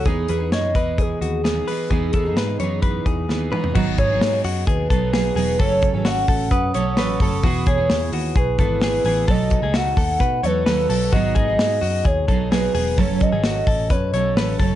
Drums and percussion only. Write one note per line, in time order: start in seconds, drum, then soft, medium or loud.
0.05 kick loud
0.05 closed hi-hat medium
0.28 closed hi-hat medium
0.52 snare medium
0.52 closed hi-hat medium
0.75 kick medium
0.75 closed hi-hat medium
0.98 kick medium
0.98 closed hi-hat medium
1.22 closed hi-hat medium
1.45 snare medium
1.45 closed hi-hat medium
1.68 open hi-hat medium
1.91 kick medium
1.91 closed hi-hat medium
2.13 kick medium
2.13 closed hi-hat medium
2.37 snare medium
2.37 closed hi-hat medium
2.60 closed hi-hat medium
2.82 kick medium
2.82 closed hi-hat medium
3.06 kick medium
3.06 closed hi-hat medium
3.29 snare soft
3.53 mid tom medium
3.64 floor tom medium
3.75 kick medium
3.75 crash medium
3.98 kick medium
3.98 hi-hat pedal medium
3.98 open hi-hat medium
4.21 snare loud
4.21 hi-hat pedal medium
4.21 open hi-hat medium
4.44 hi-hat pedal medium
4.44 open hi-hat medium
4.67 kick loud
4.67 hi-hat pedal medium
4.67 open hi-hat medium
4.90 kick medium
4.90 hi-hat pedal medium
4.90 open hi-hat medium
5.13 snare loud
5.13 hi-hat pedal medium
5.13 open hi-hat medium
5.37 hi-hat pedal medium
5.37 open hi-hat medium
5.60 kick loud
5.60 hi-hat pedal medium
5.60 open hi-hat medium
5.82 kick medium
5.82 hi-hat pedal medium
5.82 open hi-hat medium
6.05 snare medium
6.05 hi-hat pedal medium
6.05 open hi-hat loud
6.28 kick medium
6.28 hi-hat pedal medium
6.28 open hi-hat medium
6.51 kick medium
6.51 hi-hat pedal medium
6.51 open hi-hat medium
6.74 hi-hat pedal medium
6.74 open hi-hat medium
6.97 snare loud
6.97 hi-hat pedal medium
6.97 open hi-hat medium
7.20 kick medium
7.20 hi-hat pedal medium
7.20 open hi-hat medium
7.43 kick loud
7.43 hi-hat pedal medium
7.43 open hi-hat medium
7.66 kick medium
7.66 hi-hat pedal medium
7.66 open hi-hat medium
7.90 snare medium
7.90 hi-hat pedal medium
7.90 open hi-hat medium
8.13 hi-hat pedal medium
8.13 open hi-hat medium
8.36 kick loud
8.36 hi-hat pedal medium
8.36 open hi-hat medium
8.59 kick medium
8.59 hi-hat pedal medium
8.59 open hi-hat medium
8.81 snare loud
8.81 hi-hat pedal medium
8.81 open hi-hat medium
9.05 hi-hat pedal medium
9.05 open hi-hat medium
9.28 kick loud
9.28 hi-hat pedal medium
9.28 open hi-hat medium
9.50 kick medium
9.50 hi-hat pedal medium
9.50 open hi-hat medium
9.74 snare loud
9.74 hi-hat pedal medium
9.74 open hi-hat medium
9.97 kick medium
9.97 hi-hat pedal medium
9.97 open hi-hat medium
10.20 kick medium
10.20 hi-hat pedal medium
10.20 open hi-hat medium
10.44 hi-hat pedal medium
10.44 open hi-hat medium
10.66 snare loud
10.66 hi-hat pedal medium
10.66 open hi-hat medium
10.90 hi-hat pedal medium
10.90 open hi-hat medium
11.13 kick loud
11.13 hi-hat pedal medium
11.13 open hi-hat medium
11.35 kick medium
11.35 hi-hat pedal medium
11.35 open hi-hat medium
11.59 snare loud
11.59 hi-hat pedal medium
11.59 open hi-hat medium
11.82 hi-hat pedal medium
11.82 open hi-hat medium
12.05 kick loud
12.05 hi-hat pedal medium
12.05 open hi-hat medium
12.28 kick loud
12.28 hi-hat pedal medium
12.28 open hi-hat medium
12.52 snare loud
12.52 hi-hat pedal medium
12.52 open hi-hat medium
12.75 hi-hat pedal medium
12.75 open hi-hat medium
12.98 kick loud
12.98 hi-hat pedal medium
12.98 open hi-hat medium
13.20 kick medium
13.20 hi-hat pedal medium
13.20 open hi-hat medium
13.44 snare loud
13.44 hi-hat pedal medium
13.44 open hi-hat medium
13.67 kick loud
13.67 hi-hat pedal medium
13.67 open hi-hat medium
13.90 kick loud
13.90 hi-hat pedal medium
13.90 open hi-hat medium
14.14 hi-hat pedal medium
14.14 open hi-hat medium
14.37 snare loud
14.37 hi-hat pedal medium
14.37 open hi-hat medium
14.60 kick medium
14.60 hi-hat pedal medium
14.60 open hi-hat medium